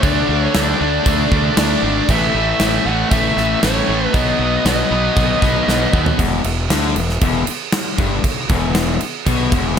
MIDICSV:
0, 0, Header, 1, 7, 480
1, 0, Start_track
1, 0, Tempo, 512821
1, 28, Time_signature, 4, 2, 24, 8
1, 9163, End_track
2, 0, Start_track
2, 0, Title_t, "Lead electric guitar"
2, 0, Program_c, 0, 29
2, 22, Note_on_c, 0, 74, 97
2, 387, Note_off_c, 0, 74, 0
2, 387, Note_on_c, 0, 73, 97
2, 506, Note_off_c, 0, 73, 0
2, 518, Note_on_c, 0, 74, 96
2, 1475, Note_off_c, 0, 74, 0
2, 1487, Note_on_c, 0, 74, 88
2, 1967, Note_on_c, 0, 76, 103
2, 1973, Note_off_c, 0, 74, 0
2, 2682, Note_off_c, 0, 76, 0
2, 2685, Note_on_c, 0, 78, 93
2, 2904, Note_off_c, 0, 78, 0
2, 2907, Note_on_c, 0, 76, 95
2, 3356, Note_off_c, 0, 76, 0
2, 3410, Note_on_c, 0, 73, 90
2, 3880, Note_on_c, 0, 75, 102
2, 3895, Note_off_c, 0, 73, 0
2, 4356, Note_off_c, 0, 75, 0
2, 4367, Note_on_c, 0, 75, 84
2, 5524, Note_off_c, 0, 75, 0
2, 9163, End_track
3, 0, Start_track
3, 0, Title_t, "Overdriven electric guitar"
3, 0, Program_c, 1, 29
3, 32, Note_on_c, 1, 50, 114
3, 38, Note_on_c, 1, 57, 106
3, 38, Note_on_c, 1, 62, 114
3, 256, Note_off_c, 1, 50, 0
3, 266, Note_off_c, 1, 62, 0
3, 267, Note_on_c, 1, 50, 89
3, 272, Note_off_c, 1, 57, 0
3, 276, Note_on_c, 1, 57, 90
3, 277, Note_on_c, 1, 62, 88
3, 499, Note_off_c, 1, 50, 0
3, 506, Note_off_c, 1, 62, 0
3, 510, Note_on_c, 1, 50, 103
3, 511, Note_off_c, 1, 57, 0
3, 515, Note_on_c, 1, 57, 105
3, 518, Note_on_c, 1, 62, 111
3, 734, Note_off_c, 1, 50, 0
3, 746, Note_off_c, 1, 62, 0
3, 746, Note_on_c, 1, 50, 87
3, 750, Note_off_c, 1, 57, 0
3, 754, Note_on_c, 1, 57, 104
3, 757, Note_on_c, 1, 62, 108
3, 970, Note_off_c, 1, 50, 0
3, 978, Note_off_c, 1, 57, 0
3, 981, Note_on_c, 1, 50, 102
3, 983, Note_off_c, 1, 62, 0
3, 989, Note_on_c, 1, 57, 103
3, 995, Note_on_c, 1, 62, 119
3, 1217, Note_off_c, 1, 50, 0
3, 1223, Note_off_c, 1, 57, 0
3, 1225, Note_off_c, 1, 62, 0
3, 1228, Note_on_c, 1, 50, 92
3, 1234, Note_on_c, 1, 57, 91
3, 1236, Note_on_c, 1, 62, 97
3, 1461, Note_off_c, 1, 50, 0
3, 1468, Note_off_c, 1, 57, 0
3, 1472, Note_on_c, 1, 50, 105
3, 1473, Note_off_c, 1, 62, 0
3, 1479, Note_on_c, 1, 57, 113
3, 1484, Note_on_c, 1, 62, 122
3, 1704, Note_off_c, 1, 50, 0
3, 1707, Note_off_c, 1, 57, 0
3, 1713, Note_off_c, 1, 62, 0
3, 1715, Note_on_c, 1, 50, 86
3, 1718, Note_on_c, 1, 57, 88
3, 1725, Note_on_c, 1, 62, 110
3, 1938, Note_off_c, 1, 50, 0
3, 1939, Note_off_c, 1, 57, 0
3, 1943, Note_off_c, 1, 62, 0
3, 1962, Note_on_c, 1, 45, 104
3, 1966, Note_on_c, 1, 52, 112
3, 1971, Note_on_c, 1, 57, 122
3, 2185, Note_off_c, 1, 45, 0
3, 2196, Note_off_c, 1, 52, 0
3, 2196, Note_off_c, 1, 57, 0
3, 2196, Note_on_c, 1, 45, 84
3, 2207, Note_on_c, 1, 52, 90
3, 2207, Note_on_c, 1, 57, 86
3, 2429, Note_off_c, 1, 45, 0
3, 2434, Note_off_c, 1, 52, 0
3, 2436, Note_off_c, 1, 57, 0
3, 2440, Note_on_c, 1, 45, 106
3, 2445, Note_on_c, 1, 52, 109
3, 2448, Note_on_c, 1, 57, 96
3, 2669, Note_off_c, 1, 45, 0
3, 2672, Note_off_c, 1, 52, 0
3, 2677, Note_off_c, 1, 57, 0
3, 2680, Note_on_c, 1, 45, 95
3, 2684, Note_on_c, 1, 52, 98
3, 2688, Note_on_c, 1, 57, 101
3, 2907, Note_off_c, 1, 45, 0
3, 2915, Note_off_c, 1, 52, 0
3, 2916, Note_off_c, 1, 57, 0
3, 2918, Note_on_c, 1, 45, 100
3, 2926, Note_on_c, 1, 52, 108
3, 2928, Note_on_c, 1, 57, 111
3, 3150, Note_off_c, 1, 45, 0
3, 3154, Note_off_c, 1, 52, 0
3, 3155, Note_off_c, 1, 57, 0
3, 3161, Note_on_c, 1, 45, 90
3, 3165, Note_on_c, 1, 52, 103
3, 3166, Note_on_c, 1, 57, 108
3, 3391, Note_off_c, 1, 45, 0
3, 3394, Note_off_c, 1, 52, 0
3, 3401, Note_off_c, 1, 57, 0
3, 3402, Note_on_c, 1, 45, 100
3, 3406, Note_on_c, 1, 52, 113
3, 3412, Note_on_c, 1, 57, 116
3, 3627, Note_off_c, 1, 45, 0
3, 3633, Note_off_c, 1, 52, 0
3, 3637, Note_off_c, 1, 57, 0
3, 3639, Note_on_c, 1, 45, 86
3, 3644, Note_on_c, 1, 52, 95
3, 3649, Note_on_c, 1, 57, 95
3, 3861, Note_off_c, 1, 45, 0
3, 3864, Note_off_c, 1, 52, 0
3, 3866, Note_off_c, 1, 57, 0
3, 3876, Note_on_c, 1, 47, 102
3, 3881, Note_on_c, 1, 54, 122
3, 3889, Note_on_c, 1, 59, 114
3, 4110, Note_off_c, 1, 47, 0
3, 4115, Note_off_c, 1, 54, 0
3, 4116, Note_off_c, 1, 59, 0
3, 4122, Note_on_c, 1, 47, 90
3, 4127, Note_on_c, 1, 54, 78
3, 4127, Note_on_c, 1, 59, 86
3, 4341, Note_off_c, 1, 47, 0
3, 4342, Note_off_c, 1, 54, 0
3, 4351, Note_off_c, 1, 59, 0
3, 4353, Note_on_c, 1, 47, 93
3, 4353, Note_on_c, 1, 54, 112
3, 4362, Note_on_c, 1, 59, 114
3, 4579, Note_off_c, 1, 47, 0
3, 4586, Note_off_c, 1, 54, 0
3, 4590, Note_off_c, 1, 59, 0
3, 4591, Note_on_c, 1, 47, 103
3, 4598, Note_on_c, 1, 54, 100
3, 4601, Note_on_c, 1, 59, 106
3, 4819, Note_off_c, 1, 47, 0
3, 4826, Note_off_c, 1, 54, 0
3, 4828, Note_off_c, 1, 59, 0
3, 4830, Note_on_c, 1, 47, 95
3, 4837, Note_on_c, 1, 54, 101
3, 4839, Note_on_c, 1, 59, 123
3, 5058, Note_off_c, 1, 47, 0
3, 5064, Note_off_c, 1, 54, 0
3, 5068, Note_off_c, 1, 59, 0
3, 5069, Note_on_c, 1, 47, 100
3, 5075, Note_on_c, 1, 54, 92
3, 5079, Note_on_c, 1, 59, 109
3, 5293, Note_off_c, 1, 47, 0
3, 5298, Note_off_c, 1, 54, 0
3, 5304, Note_off_c, 1, 59, 0
3, 5304, Note_on_c, 1, 47, 101
3, 5309, Note_on_c, 1, 54, 111
3, 5316, Note_on_c, 1, 59, 125
3, 5533, Note_off_c, 1, 47, 0
3, 5543, Note_off_c, 1, 54, 0
3, 5545, Note_on_c, 1, 47, 99
3, 5548, Note_off_c, 1, 59, 0
3, 5554, Note_on_c, 1, 54, 86
3, 5559, Note_on_c, 1, 59, 98
3, 5775, Note_off_c, 1, 47, 0
3, 5780, Note_off_c, 1, 54, 0
3, 5782, Note_off_c, 1, 59, 0
3, 5783, Note_on_c, 1, 40, 100
3, 6022, Note_off_c, 1, 40, 0
3, 6031, Note_on_c, 1, 40, 68
3, 6225, Note_off_c, 1, 40, 0
3, 6274, Note_on_c, 1, 50, 107
3, 6507, Note_off_c, 1, 50, 0
3, 6517, Note_on_c, 1, 40, 78
3, 6708, Note_off_c, 1, 40, 0
3, 6754, Note_on_c, 1, 40, 103
3, 6983, Note_off_c, 1, 40, 0
3, 7469, Note_on_c, 1, 43, 101
3, 7704, Note_off_c, 1, 43, 0
3, 7953, Note_on_c, 1, 40, 102
3, 8421, Note_off_c, 1, 40, 0
3, 8679, Note_on_c, 1, 47, 116
3, 8908, Note_off_c, 1, 47, 0
3, 8908, Note_on_c, 1, 40, 106
3, 9163, Note_off_c, 1, 40, 0
3, 9163, End_track
4, 0, Start_track
4, 0, Title_t, "Fingered electric bass"
4, 0, Program_c, 2, 33
4, 30, Note_on_c, 2, 38, 104
4, 192, Note_off_c, 2, 38, 0
4, 272, Note_on_c, 2, 38, 107
4, 433, Note_off_c, 2, 38, 0
4, 516, Note_on_c, 2, 38, 99
4, 675, Note_off_c, 2, 38, 0
4, 756, Note_on_c, 2, 38, 100
4, 916, Note_off_c, 2, 38, 0
4, 994, Note_on_c, 2, 38, 91
4, 1154, Note_off_c, 2, 38, 0
4, 1231, Note_on_c, 2, 38, 86
4, 1392, Note_off_c, 2, 38, 0
4, 1471, Note_on_c, 2, 38, 95
4, 1632, Note_off_c, 2, 38, 0
4, 1708, Note_on_c, 2, 32, 82
4, 1871, Note_off_c, 2, 32, 0
4, 1955, Note_on_c, 2, 33, 106
4, 2115, Note_off_c, 2, 33, 0
4, 2196, Note_on_c, 2, 33, 107
4, 2356, Note_off_c, 2, 33, 0
4, 2433, Note_on_c, 2, 33, 94
4, 2594, Note_off_c, 2, 33, 0
4, 2672, Note_on_c, 2, 33, 91
4, 2834, Note_off_c, 2, 33, 0
4, 2913, Note_on_c, 2, 33, 91
4, 3075, Note_off_c, 2, 33, 0
4, 3152, Note_on_c, 2, 33, 85
4, 3314, Note_off_c, 2, 33, 0
4, 3396, Note_on_c, 2, 33, 91
4, 3557, Note_off_c, 2, 33, 0
4, 3637, Note_on_c, 2, 33, 89
4, 3798, Note_off_c, 2, 33, 0
4, 3876, Note_on_c, 2, 35, 108
4, 4037, Note_off_c, 2, 35, 0
4, 4110, Note_on_c, 2, 35, 101
4, 4273, Note_off_c, 2, 35, 0
4, 4350, Note_on_c, 2, 35, 93
4, 4513, Note_off_c, 2, 35, 0
4, 4594, Note_on_c, 2, 35, 91
4, 4756, Note_off_c, 2, 35, 0
4, 4837, Note_on_c, 2, 35, 86
4, 4998, Note_off_c, 2, 35, 0
4, 5076, Note_on_c, 2, 35, 80
4, 5238, Note_off_c, 2, 35, 0
4, 5314, Note_on_c, 2, 35, 83
4, 5476, Note_off_c, 2, 35, 0
4, 5553, Note_on_c, 2, 39, 88
4, 5715, Note_off_c, 2, 39, 0
4, 5794, Note_on_c, 2, 28, 98
4, 6017, Note_off_c, 2, 28, 0
4, 6030, Note_on_c, 2, 28, 87
4, 6255, Note_off_c, 2, 28, 0
4, 6271, Note_on_c, 2, 38, 101
4, 6496, Note_off_c, 2, 38, 0
4, 6514, Note_on_c, 2, 28, 88
4, 6738, Note_off_c, 2, 28, 0
4, 6755, Note_on_c, 2, 28, 90
4, 6978, Note_off_c, 2, 28, 0
4, 7475, Note_on_c, 2, 31, 92
4, 7698, Note_off_c, 2, 31, 0
4, 7955, Note_on_c, 2, 28, 108
4, 8400, Note_off_c, 2, 28, 0
4, 8677, Note_on_c, 2, 35, 96
4, 8897, Note_off_c, 2, 35, 0
4, 8912, Note_on_c, 2, 28, 97
4, 9163, Note_off_c, 2, 28, 0
4, 9163, End_track
5, 0, Start_track
5, 0, Title_t, "Muted fingered electric bass strokes"
5, 7000, Note_on_c, 9, 29, 41
5, 7093, Note_off_c, 9, 29, 0
5, 7714, Note_on_c, 9, 29, 47
5, 7807, Note_off_c, 9, 29, 0
5, 8446, Note_on_c, 9, 29, 42
5, 8540, Note_off_c, 9, 29, 0
5, 9163, End_track
6, 0, Start_track
6, 0, Title_t, "Muted overdriven electric guitar strokes"
6, 6994, Note_on_c, 9, 29, 56
6, 7087, Note_off_c, 9, 29, 0
6, 7719, Note_on_c, 9, 29, 63
6, 7813, Note_off_c, 9, 29, 0
6, 8432, Note_on_c, 9, 29, 63
6, 8526, Note_off_c, 9, 29, 0
6, 9163, End_track
7, 0, Start_track
7, 0, Title_t, "Drums"
7, 29, Note_on_c, 9, 36, 100
7, 29, Note_on_c, 9, 49, 62
7, 123, Note_off_c, 9, 36, 0
7, 123, Note_off_c, 9, 49, 0
7, 509, Note_on_c, 9, 49, 55
7, 511, Note_on_c, 9, 38, 110
7, 603, Note_off_c, 9, 49, 0
7, 604, Note_off_c, 9, 38, 0
7, 990, Note_on_c, 9, 49, 57
7, 993, Note_on_c, 9, 36, 108
7, 1083, Note_off_c, 9, 49, 0
7, 1086, Note_off_c, 9, 36, 0
7, 1233, Note_on_c, 9, 36, 89
7, 1326, Note_off_c, 9, 36, 0
7, 1470, Note_on_c, 9, 49, 71
7, 1472, Note_on_c, 9, 38, 120
7, 1563, Note_off_c, 9, 49, 0
7, 1565, Note_off_c, 9, 38, 0
7, 1952, Note_on_c, 9, 49, 64
7, 1954, Note_on_c, 9, 36, 92
7, 2046, Note_off_c, 9, 49, 0
7, 2048, Note_off_c, 9, 36, 0
7, 2430, Note_on_c, 9, 49, 63
7, 2432, Note_on_c, 9, 38, 100
7, 2523, Note_off_c, 9, 49, 0
7, 2525, Note_off_c, 9, 38, 0
7, 2914, Note_on_c, 9, 49, 57
7, 2915, Note_on_c, 9, 36, 108
7, 3008, Note_off_c, 9, 49, 0
7, 3009, Note_off_c, 9, 36, 0
7, 3156, Note_on_c, 9, 38, 36
7, 3249, Note_off_c, 9, 38, 0
7, 3395, Note_on_c, 9, 49, 67
7, 3397, Note_on_c, 9, 38, 116
7, 3489, Note_off_c, 9, 49, 0
7, 3491, Note_off_c, 9, 38, 0
7, 3876, Note_on_c, 9, 36, 101
7, 3878, Note_on_c, 9, 49, 54
7, 3970, Note_off_c, 9, 36, 0
7, 3972, Note_off_c, 9, 49, 0
7, 4358, Note_on_c, 9, 49, 54
7, 4360, Note_on_c, 9, 38, 102
7, 4451, Note_off_c, 9, 49, 0
7, 4453, Note_off_c, 9, 38, 0
7, 4836, Note_on_c, 9, 36, 104
7, 4836, Note_on_c, 9, 49, 57
7, 4929, Note_off_c, 9, 36, 0
7, 4930, Note_off_c, 9, 49, 0
7, 5076, Note_on_c, 9, 36, 89
7, 5079, Note_on_c, 9, 38, 39
7, 5169, Note_off_c, 9, 36, 0
7, 5173, Note_off_c, 9, 38, 0
7, 5321, Note_on_c, 9, 38, 70
7, 5415, Note_off_c, 9, 38, 0
7, 5554, Note_on_c, 9, 36, 89
7, 5648, Note_off_c, 9, 36, 0
7, 5675, Note_on_c, 9, 43, 101
7, 5769, Note_off_c, 9, 43, 0
7, 5794, Note_on_c, 9, 36, 91
7, 5795, Note_on_c, 9, 49, 73
7, 5887, Note_off_c, 9, 36, 0
7, 5888, Note_off_c, 9, 49, 0
7, 6031, Note_on_c, 9, 49, 68
7, 6125, Note_off_c, 9, 49, 0
7, 6273, Note_on_c, 9, 49, 82
7, 6275, Note_on_c, 9, 38, 98
7, 6366, Note_off_c, 9, 49, 0
7, 6368, Note_off_c, 9, 38, 0
7, 6513, Note_on_c, 9, 49, 59
7, 6607, Note_off_c, 9, 49, 0
7, 6638, Note_on_c, 9, 38, 35
7, 6731, Note_off_c, 9, 38, 0
7, 6751, Note_on_c, 9, 49, 77
7, 6755, Note_on_c, 9, 36, 103
7, 6845, Note_off_c, 9, 49, 0
7, 6848, Note_off_c, 9, 36, 0
7, 6992, Note_on_c, 9, 49, 69
7, 7086, Note_off_c, 9, 49, 0
7, 7229, Note_on_c, 9, 49, 82
7, 7230, Note_on_c, 9, 38, 122
7, 7322, Note_off_c, 9, 49, 0
7, 7324, Note_off_c, 9, 38, 0
7, 7472, Note_on_c, 9, 49, 54
7, 7473, Note_on_c, 9, 36, 107
7, 7566, Note_off_c, 9, 49, 0
7, 7567, Note_off_c, 9, 36, 0
7, 7713, Note_on_c, 9, 36, 98
7, 7713, Note_on_c, 9, 49, 68
7, 7806, Note_off_c, 9, 36, 0
7, 7807, Note_off_c, 9, 49, 0
7, 7950, Note_on_c, 9, 49, 61
7, 7953, Note_on_c, 9, 36, 112
7, 8043, Note_off_c, 9, 49, 0
7, 8047, Note_off_c, 9, 36, 0
7, 8187, Note_on_c, 9, 49, 70
7, 8189, Note_on_c, 9, 38, 107
7, 8280, Note_off_c, 9, 49, 0
7, 8282, Note_off_c, 9, 38, 0
7, 8429, Note_on_c, 9, 49, 61
7, 8522, Note_off_c, 9, 49, 0
7, 8672, Note_on_c, 9, 36, 91
7, 8672, Note_on_c, 9, 49, 72
7, 8766, Note_off_c, 9, 36, 0
7, 8766, Note_off_c, 9, 49, 0
7, 8911, Note_on_c, 9, 36, 111
7, 8912, Note_on_c, 9, 49, 64
7, 9005, Note_off_c, 9, 36, 0
7, 9005, Note_off_c, 9, 49, 0
7, 9163, End_track
0, 0, End_of_file